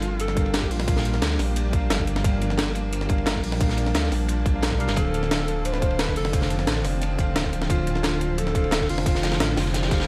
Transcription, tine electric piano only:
Already playing: G3 D4 A#4 F5
0.34 G3 D4 A#4
0.39 F5
0.85 G3 D4 A#4
0.90 F5
1.71 G3 D4 A#4
1.76 F5
2.22 G3 D4 A#4
2.27 F5
3.07 G3 D4 A#4
3.12 F5
3.58 G3 D4 A#4
3.63 F5
4.53 G3 D4 A#4 F5
4.79 G3 D4 A#4 F5
4.94 D3 D4 C5
5.00 F5
5.80 D3 D4 C5
5.84 F5
6.31 D3 D4 C5
6.36 F5
7.16 D3 D4 C5
7.21 F5
7.67 D3 D4 C5
7.72 F5
8.53 D3 D4 C5
8.57 F5
9.04 D3 D4 C5
9.09 F5
9.89 D3 D4 C5
9.94 F5

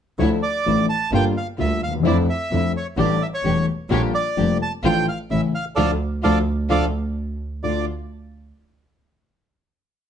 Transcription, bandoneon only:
0.19 C#5
0.43 D5
0.89 A5
1.15 G5
1.37 F5
1.60 E5
1.83 F5
2.07 D5
2.30 E5
2.77 C#5
2.99 D5
3.22 E5
3.34 C#5
3.91 C#5
4.14 D5
4.62 A5
4.85 G5
5.08 F5
5.31 E5
5.55 F5
5.76 A4 D5 F5
6.24 A4 D5 F5
6.70 A4 D5 F5
7.64 D5

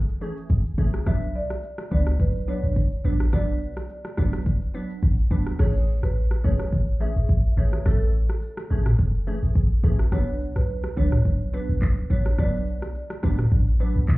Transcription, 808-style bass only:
0.50 G#1
0.78 B1
1.06 B1
1.92 C#2
2.20 B1
2.64 A1
3.05 A1
3.33 B1
4.18 B1
5.03 A1
5.31 B1
5.59 A1
6.03 A1
6.44 B1
6.72 A1
7.16 G#1
7.29 A1
7.57 G#1
7.86 A1
8.71 A1
8.99 F#1
9.43 G#1
9.55 A1
9.84 A1
10.12 B1
10.56 B1
10.97 C#2
11.25 B1
11.69 A1
11.82 B1
12.10 A1
12.38 B1
13.24 B1
13.52 A1
13.96 B1
14.08 B2

